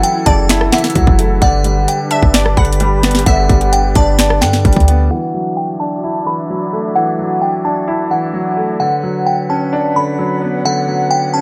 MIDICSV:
0, 0, Header, 1, 7, 480
1, 0, Start_track
1, 0, Tempo, 461538
1, 1475, Time_signature, 4, 2, 24, 8
1, 11868, End_track
2, 0, Start_track
2, 0, Title_t, "Synth bell"
2, 0, Program_c, 0, 98
2, 36, Note_on_c, 0, 79, 90
2, 258, Note_off_c, 0, 79, 0
2, 272, Note_on_c, 0, 81, 95
2, 725, Note_off_c, 0, 81, 0
2, 751, Note_on_c, 0, 78, 83
2, 1431, Note_off_c, 0, 78, 0
2, 1477, Note_on_c, 0, 78, 111
2, 1927, Note_off_c, 0, 78, 0
2, 1959, Note_on_c, 0, 79, 74
2, 2179, Note_off_c, 0, 79, 0
2, 2193, Note_on_c, 0, 81, 76
2, 2645, Note_off_c, 0, 81, 0
2, 2675, Note_on_c, 0, 83, 83
2, 3353, Note_off_c, 0, 83, 0
2, 3395, Note_on_c, 0, 78, 103
2, 3846, Note_off_c, 0, 78, 0
2, 3875, Note_on_c, 0, 79, 77
2, 4097, Note_off_c, 0, 79, 0
2, 4119, Note_on_c, 0, 81, 84
2, 4569, Note_off_c, 0, 81, 0
2, 4591, Note_on_c, 0, 79, 81
2, 5271, Note_off_c, 0, 79, 0
2, 5314, Note_on_c, 0, 78, 107
2, 5765, Note_off_c, 0, 78, 0
2, 5791, Note_on_c, 0, 79, 73
2, 6015, Note_off_c, 0, 79, 0
2, 6029, Note_on_c, 0, 81, 82
2, 6483, Note_off_c, 0, 81, 0
2, 6517, Note_on_c, 0, 83, 77
2, 7194, Note_off_c, 0, 83, 0
2, 7233, Note_on_c, 0, 78, 104
2, 7685, Note_off_c, 0, 78, 0
2, 7713, Note_on_c, 0, 79, 80
2, 7936, Note_off_c, 0, 79, 0
2, 7954, Note_on_c, 0, 81, 86
2, 8406, Note_off_c, 0, 81, 0
2, 8435, Note_on_c, 0, 78, 74
2, 9113, Note_off_c, 0, 78, 0
2, 9151, Note_on_c, 0, 78, 105
2, 9604, Note_off_c, 0, 78, 0
2, 9635, Note_on_c, 0, 79, 74
2, 9857, Note_off_c, 0, 79, 0
2, 9877, Note_on_c, 0, 81, 76
2, 10327, Note_off_c, 0, 81, 0
2, 10360, Note_on_c, 0, 83, 77
2, 11036, Note_off_c, 0, 83, 0
2, 11081, Note_on_c, 0, 78, 105
2, 11529, Note_off_c, 0, 78, 0
2, 11550, Note_on_c, 0, 79, 82
2, 11774, Note_off_c, 0, 79, 0
2, 11789, Note_on_c, 0, 81, 83
2, 11868, Note_off_c, 0, 81, 0
2, 11868, End_track
3, 0, Start_track
3, 0, Title_t, "Synth pluck"
3, 0, Program_c, 1, 84
3, 0, Note_on_c, 1, 76, 104
3, 233, Note_off_c, 1, 76, 0
3, 277, Note_on_c, 1, 74, 87
3, 727, Note_off_c, 1, 74, 0
3, 756, Note_on_c, 1, 76, 76
3, 983, Note_off_c, 1, 76, 0
3, 1476, Note_on_c, 1, 74, 89
3, 2154, Note_off_c, 1, 74, 0
3, 2193, Note_on_c, 1, 76, 85
3, 2422, Note_off_c, 1, 76, 0
3, 2436, Note_on_c, 1, 74, 81
3, 2664, Note_off_c, 1, 74, 0
3, 2674, Note_on_c, 1, 78, 81
3, 2902, Note_off_c, 1, 78, 0
3, 3394, Note_on_c, 1, 76, 112
3, 4073, Note_off_c, 1, 76, 0
3, 4114, Note_on_c, 1, 74, 94
3, 4565, Note_off_c, 1, 74, 0
3, 4589, Note_on_c, 1, 78, 75
3, 4820, Note_off_c, 1, 78, 0
3, 11868, End_track
4, 0, Start_track
4, 0, Title_t, "Flute section"
4, 0, Program_c, 2, 73
4, 0, Note_on_c, 2, 64, 76
4, 0, Note_on_c, 2, 69, 72
4, 0, Note_on_c, 2, 78, 87
4, 1436, Note_off_c, 2, 64, 0
4, 1436, Note_off_c, 2, 69, 0
4, 1436, Note_off_c, 2, 78, 0
4, 1475, Note_on_c, 2, 62, 77
4, 1475, Note_on_c, 2, 67, 91
4, 1475, Note_on_c, 2, 71, 73
4, 5026, Note_off_c, 2, 62, 0
4, 5028, Note_off_c, 2, 71, 0
4, 5035, Note_off_c, 2, 67, 0
4, 5315, Note_on_c, 2, 62, 73
4, 5315, Note_on_c, 2, 66, 68
4, 5315, Note_on_c, 2, 76, 78
4, 9116, Note_off_c, 2, 62, 0
4, 9116, Note_off_c, 2, 66, 0
4, 9116, Note_off_c, 2, 76, 0
4, 9155, Note_on_c, 2, 71, 67
4, 9155, Note_on_c, 2, 73, 73
4, 9155, Note_on_c, 2, 78, 78
4, 11868, Note_off_c, 2, 71, 0
4, 11868, Note_off_c, 2, 73, 0
4, 11868, Note_off_c, 2, 78, 0
4, 11868, End_track
5, 0, Start_track
5, 0, Title_t, "Grand piano"
5, 0, Program_c, 3, 0
5, 0, Control_c, 3, 64, 127
5, 0, Note_on_c, 3, 52, 99
5, 0, Note_on_c, 3, 54, 80
5, 0, Note_on_c, 3, 57, 84
5, 0, Note_on_c, 3, 61, 90
5, 0, Note_on_c, 3, 64, 108
5, 279, Note_on_c, 3, 49, 88
5, 511, Note_off_c, 3, 64, 0
5, 511, Note_on_c, 3, 64, 106
5, 515, Note_off_c, 3, 57, 0
5, 738, Note_off_c, 3, 52, 0
5, 753, Note_on_c, 3, 52, 78
5, 982, Note_off_c, 3, 54, 0
5, 998, Note_on_c, 3, 54, 88
5, 1234, Note_on_c, 3, 57, 85
5, 1469, Note_on_c, 3, 50, 96
5, 1473, Note_off_c, 3, 64, 0
5, 1474, Note_off_c, 3, 52, 0
5, 1474, Note_off_c, 3, 57, 0
5, 1476, Note_off_c, 3, 54, 0
5, 1477, Note_off_c, 3, 49, 0
5, 1490, Control_c, 3, 64, 0
5, 1492, Note_off_c, 3, 61, 0
5, 1639, Control_c, 3, 64, 127
5, 1712, Note_on_c, 3, 55, 82
5, 2196, Note_on_c, 3, 62, 83
5, 2429, Note_on_c, 3, 74, 107
5, 2655, Note_off_c, 3, 50, 0
5, 2670, Note_on_c, 3, 50, 72
5, 2903, Note_off_c, 3, 55, 0
5, 2918, Note_on_c, 3, 55, 96
5, 3158, Note_on_c, 3, 59, 91
5, 3383, Note_off_c, 3, 50, 0
5, 3395, Note_off_c, 3, 62, 0
5, 3399, Note_on_c, 3, 50, 99
5, 3619, Note_off_c, 3, 55, 0
5, 3632, Note_off_c, 3, 74, 0
5, 3634, Note_on_c, 3, 55, 85
5, 4115, Note_on_c, 3, 62, 100
5, 4352, Note_on_c, 3, 74, 103
5, 4356, Note_off_c, 3, 59, 0
5, 4572, Note_off_c, 3, 50, 0
5, 4587, Note_on_c, 3, 50, 77
5, 4820, Note_off_c, 3, 55, 0
5, 4835, Note_on_c, 3, 55, 84
5, 5077, Note_on_c, 3, 59, 84
5, 5309, Note_on_c, 3, 52, 92
5, 5311, Note_off_c, 3, 50, 0
5, 5313, Note_off_c, 3, 74, 0
5, 5315, Note_off_c, 3, 55, 0
5, 5315, Note_off_c, 3, 62, 0
5, 5316, Note_off_c, 3, 59, 0
5, 5328, Control_c, 3, 64, 0
5, 5482, Control_c, 3, 64, 127
5, 5554, Note_on_c, 3, 54, 73
5, 6033, Note_on_c, 3, 62, 76
5, 6278, Note_on_c, 3, 64, 88
5, 6499, Note_off_c, 3, 52, 0
5, 6515, Note_on_c, 3, 52, 73
5, 6746, Note_off_c, 3, 54, 0
5, 6761, Note_on_c, 3, 54, 79
5, 6996, Note_on_c, 3, 57, 82
5, 7218, Note_off_c, 3, 52, 0
5, 7234, Note_off_c, 3, 62, 0
5, 7234, Note_on_c, 3, 52, 89
5, 7459, Note_off_c, 3, 54, 0
5, 7474, Note_on_c, 3, 54, 77
5, 7477, Note_off_c, 3, 64, 0
5, 7953, Note_on_c, 3, 62, 79
5, 8192, Note_on_c, 3, 64, 99
5, 8195, Note_off_c, 3, 57, 0
5, 8416, Note_off_c, 3, 52, 0
5, 8431, Note_on_c, 3, 52, 78
5, 8654, Note_off_c, 3, 54, 0
5, 8670, Note_on_c, 3, 54, 82
5, 8915, Note_on_c, 3, 57, 81
5, 9152, Note_off_c, 3, 54, 0
5, 9153, Note_off_c, 3, 52, 0
5, 9153, Note_off_c, 3, 64, 0
5, 9154, Note_off_c, 3, 62, 0
5, 9154, Note_on_c, 3, 50, 86
5, 9155, Note_off_c, 3, 57, 0
5, 9169, Control_c, 3, 64, 0
5, 9328, Control_c, 3, 64, 127
5, 9395, Note_on_c, 3, 54, 78
5, 9875, Note_on_c, 3, 61, 82
5, 10116, Note_on_c, 3, 62, 100
5, 10339, Note_off_c, 3, 50, 0
5, 10354, Note_on_c, 3, 50, 73
5, 10579, Note_off_c, 3, 54, 0
5, 10594, Note_on_c, 3, 54, 82
5, 10833, Note_on_c, 3, 59, 82
5, 11059, Note_off_c, 3, 50, 0
5, 11075, Note_off_c, 3, 61, 0
5, 11075, Note_on_c, 3, 50, 92
5, 11302, Note_off_c, 3, 54, 0
5, 11315, Note_off_c, 3, 62, 0
5, 11318, Note_on_c, 3, 54, 74
5, 11795, Note_on_c, 3, 61, 84
5, 11868, Note_off_c, 3, 50, 0
5, 11868, Note_off_c, 3, 54, 0
5, 11868, Note_off_c, 3, 59, 0
5, 11868, Note_off_c, 3, 61, 0
5, 11868, End_track
6, 0, Start_track
6, 0, Title_t, "808-style bass"
6, 0, Program_c, 4, 38
6, 275, Note_on_c, 4, 30, 108
6, 735, Note_off_c, 4, 30, 0
6, 994, Note_on_c, 4, 37, 106
6, 1110, Note_off_c, 4, 37, 0
6, 1114, Note_on_c, 4, 30, 105
6, 1460, Note_off_c, 4, 30, 0
6, 1475, Note_on_c, 4, 31, 118
6, 1936, Note_off_c, 4, 31, 0
6, 2314, Note_on_c, 4, 31, 103
6, 2660, Note_off_c, 4, 31, 0
6, 2675, Note_on_c, 4, 31, 105
6, 3366, Note_off_c, 4, 31, 0
6, 3394, Note_on_c, 4, 31, 119
6, 3625, Note_off_c, 4, 31, 0
6, 3634, Note_on_c, 4, 31, 105
6, 4095, Note_off_c, 4, 31, 0
6, 4115, Note_on_c, 4, 31, 112
6, 4595, Note_on_c, 4, 43, 99
6, 4610, Note_off_c, 4, 31, 0
6, 4823, Note_off_c, 4, 43, 0
6, 4835, Note_on_c, 4, 31, 108
6, 4950, Note_off_c, 4, 31, 0
6, 4955, Note_on_c, 4, 38, 103
6, 5300, Note_off_c, 4, 38, 0
6, 11868, End_track
7, 0, Start_track
7, 0, Title_t, "Drums"
7, 36, Note_on_c, 9, 42, 85
7, 140, Note_off_c, 9, 42, 0
7, 272, Note_on_c, 9, 42, 90
7, 274, Note_on_c, 9, 36, 93
7, 376, Note_off_c, 9, 42, 0
7, 378, Note_off_c, 9, 36, 0
7, 514, Note_on_c, 9, 38, 121
7, 516, Note_on_c, 9, 42, 76
7, 524, Note_on_c, 9, 26, 96
7, 618, Note_off_c, 9, 38, 0
7, 620, Note_off_c, 9, 42, 0
7, 628, Note_off_c, 9, 26, 0
7, 634, Note_on_c, 9, 37, 98
7, 738, Note_off_c, 9, 37, 0
7, 754, Note_on_c, 9, 38, 94
7, 754, Note_on_c, 9, 42, 65
7, 765, Note_on_c, 9, 26, 74
7, 814, Note_off_c, 9, 42, 0
7, 814, Note_on_c, 9, 42, 65
7, 858, Note_off_c, 9, 38, 0
7, 869, Note_off_c, 9, 26, 0
7, 873, Note_on_c, 9, 38, 68
7, 874, Note_off_c, 9, 42, 0
7, 874, Note_on_c, 9, 42, 65
7, 934, Note_off_c, 9, 42, 0
7, 934, Note_on_c, 9, 42, 65
7, 977, Note_off_c, 9, 38, 0
7, 993, Note_off_c, 9, 42, 0
7, 993, Note_on_c, 9, 42, 77
7, 994, Note_on_c, 9, 36, 95
7, 1097, Note_off_c, 9, 42, 0
7, 1098, Note_off_c, 9, 36, 0
7, 1114, Note_on_c, 9, 36, 94
7, 1218, Note_off_c, 9, 36, 0
7, 1235, Note_on_c, 9, 42, 82
7, 1339, Note_off_c, 9, 42, 0
7, 1474, Note_on_c, 9, 42, 87
7, 1475, Note_on_c, 9, 36, 122
7, 1578, Note_off_c, 9, 42, 0
7, 1579, Note_off_c, 9, 36, 0
7, 1710, Note_on_c, 9, 42, 75
7, 1814, Note_off_c, 9, 42, 0
7, 1956, Note_on_c, 9, 42, 88
7, 2060, Note_off_c, 9, 42, 0
7, 2192, Note_on_c, 9, 42, 87
7, 2296, Note_off_c, 9, 42, 0
7, 2314, Note_on_c, 9, 36, 84
7, 2418, Note_off_c, 9, 36, 0
7, 2434, Note_on_c, 9, 38, 121
7, 2436, Note_on_c, 9, 42, 79
7, 2444, Note_on_c, 9, 26, 95
7, 2538, Note_off_c, 9, 38, 0
7, 2540, Note_off_c, 9, 42, 0
7, 2548, Note_off_c, 9, 26, 0
7, 2554, Note_on_c, 9, 37, 102
7, 2658, Note_off_c, 9, 37, 0
7, 2674, Note_on_c, 9, 42, 47
7, 2675, Note_on_c, 9, 36, 91
7, 2754, Note_off_c, 9, 42, 0
7, 2754, Note_on_c, 9, 42, 64
7, 2779, Note_off_c, 9, 36, 0
7, 2835, Note_off_c, 9, 42, 0
7, 2835, Note_on_c, 9, 42, 77
7, 2913, Note_off_c, 9, 42, 0
7, 2913, Note_on_c, 9, 42, 79
7, 3017, Note_off_c, 9, 42, 0
7, 3154, Note_on_c, 9, 42, 71
7, 3155, Note_on_c, 9, 38, 88
7, 3165, Note_on_c, 9, 26, 72
7, 3234, Note_off_c, 9, 42, 0
7, 3234, Note_on_c, 9, 42, 72
7, 3259, Note_off_c, 9, 38, 0
7, 3269, Note_off_c, 9, 26, 0
7, 3274, Note_on_c, 9, 38, 63
7, 3314, Note_off_c, 9, 42, 0
7, 3314, Note_on_c, 9, 42, 73
7, 3378, Note_off_c, 9, 38, 0
7, 3394, Note_off_c, 9, 42, 0
7, 3394, Note_on_c, 9, 42, 86
7, 3395, Note_on_c, 9, 36, 117
7, 3498, Note_off_c, 9, 42, 0
7, 3499, Note_off_c, 9, 36, 0
7, 3634, Note_on_c, 9, 36, 97
7, 3634, Note_on_c, 9, 42, 61
7, 3738, Note_off_c, 9, 36, 0
7, 3738, Note_off_c, 9, 42, 0
7, 3755, Note_on_c, 9, 42, 58
7, 3859, Note_off_c, 9, 42, 0
7, 3877, Note_on_c, 9, 42, 87
7, 3981, Note_off_c, 9, 42, 0
7, 4112, Note_on_c, 9, 42, 91
7, 4115, Note_on_c, 9, 36, 92
7, 4216, Note_off_c, 9, 42, 0
7, 4219, Note_off_c, 9, 36, 0
7, 4354, Note_on_c, 9, 38, 119
7, 4356, Note_on_c, 9, 42, 81
7, 4365, Note_on_c, 9, 26, 94
7, 4458, Note_off_c, 9, 38, 0
7, 4460, Note_off_c, 9, 42, 0
7, 4469, Note_off_c, 9, 26, 0
7, 4475, Note_on_c, 9, 37, 101
7, 4579, Note_off_c, 9, 37, 0
7, 4595, Note_on_c, 9, 38, 93
7, 4600, Note_on_c, 9, 42, 74
7, 4606, Note_on_c, 9, 26, 72
7, 4699, Note_off_c, 9, 38, 0
7, 4704, Note_off_c, 9, 42, 0
7, 4710, Note_off_c, 9, 26, 0
7, 4714, Note_on_c, 9, 38, 68
7, 4818, Note_off_c, 9, 38, 0
7, 4835, Note_on_c, 9, 36, 93
7, 4835, Note_on_c, 9, 42, 79
7, 4915, Note_off_c, 9, 42, 0
7, 4915, Note_on_c, 9, 42, 65
7, 4939, Note_off_c, 9, 36, 0
7, 4955, Note_on_c, 9, 36, 92
7, 4995, Note_off_c, 9, 42, 0
7, 4995, Note_on_c, 9, 42, 50
7, 5059, Note_off_c, 9, 36, 0
7, 5075, Note_off_c, 9, 42, 0
7, 5075, Note_on_c, 9, 42, 85
7, 5179, Note_off_c, 9, 42, 0
7, 11868, End_track
0, 0, End_of_file